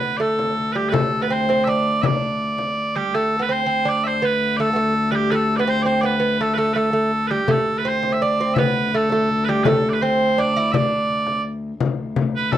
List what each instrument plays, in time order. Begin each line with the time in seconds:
Already playing: viola da gamba D2, lute B3, bagpipes B4
0.02 frame drum
0.17 lute A3, bagpipes A4 D5, frame drum
0.39 frame drum
0.57 frame drum
0.72 lute G3, bagpipes G4 B4
0.89 lute A3, bagpipes B4
0.93 bagpipes A4, frame drum
1.12 frame drum
1.22 lute B3, bagpipes B4
1.30 lute C4, bagpipes C5, frame drum
1.49 lute C4, frame drum
1.64 lute D4, bagpipes E5, frame drum
1.68 bagpipes D5
2.02 lute D4, bagpipes D5 E5, frame drum
2.58 frame drum
2.96 lute G3, bagpipes G4
3.12 viola da gamba D2, lute A3, bagpipes A4
3.39 lute B3, bagpipes B4
3.49 lute C4, bagpipes C5
3.66 lute C4
3.85 lute D4, bagpipes D5
4.04 bagpipes C5 E5
4.22 lute B3, bagpipes B4
4.57 lute A3, bagpipes A4 D5
4.73 lute A3 B3
5.11 lute G3, bagpipes B4
5.15 bagpipes G4
5.31 lute A3, bagpipes B4
5.35 bagpipes A4
5.56 lute B3, bagpipes B4 D5
5.67 lute C4, bagpipes C5
5.82 lute C4, bagpipes C5 D5
6.01 lute B3, bagpipes D5
6.05 bagpipes B4
6.20 lute B3
6.41 lute A3, bagpipes A4
6.54 bagpipes B4
6.58 lute A3, bagpipes A4
6.73 lute A3, bagpipes A4 B4
6.93 lute A3
7.27 lute G3, bagpipes G4 B4
7.48 viola da gamba D2, lute A3, bagpipes A4, frame drum
7.67 frame drum
7.78 bagpipes B4
7.84 lute C4, bagpipes C5, frame drum
8.03 frame drum
8.13 bagpipes E5
8.21 lute D4, bagpipes D5, frame drum
8.40 lute C4
8.54 bagpipes E5, frame drum
8.58 lute B3, bagpipes B4
8.75 frame drum
8.92 lute A3, bagpipes A4, frame drum
9.10 lute A3, frame drum
9.28 frame drum
9.45 bagpipes B4
9.49 lute G3, bagpipes G4
9.64 lute A3, bagpipes B4, frame drum
9.68 bagpipes A4
9.83 frame drum
9.89 bagpipes D5
9.93 bagpipes B4
10.01 lute C4, bagpipes C5, frame drum
10.38 lute D4, bagpipes D5, frame drum
10.56 lute E4
10.72 lute D4, bagpipes D5 E5, frame drum
11.10 frame drum
11.27 frame drum
11.80 viola da gamba D2, frame drum
12.16 frame drum
12.35 bagpipes B4, frame drum
12.52 bagpipes A4, frame drum